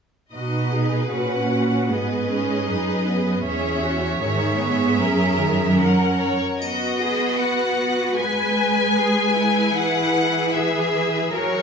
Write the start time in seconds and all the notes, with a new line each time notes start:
0.33 B2 D#4 F#4 B4 D#5
0.74 G#4
1.12 A#2 C#4 F#4 F#5
1.50 F#4
1.90 G#2 B3 G#4 B4 D#5
2.30 C#4
2.68 F#2 D#4 B4
3.06 B3
3.45 E2 C#4 G#4 C#5 E5
3.84 F#4
4.21 G#2 D#3 G#4 E5
4.60 B3
4.99 F#2 C#4 A#4
5.39 D#3
5.77 C#4 A#4 F#5
6.19 C#5
6.61 B3 F#4 B4 D#5, triangle
7.01 G#4
7.39 F#4 F#5
8.17 G#3 G#4 B4 G#5
8.97 G#4
9.37 E4
9.74 E3 F#5
10.53 G#4 E5
11.31 F#3 A#4 C#5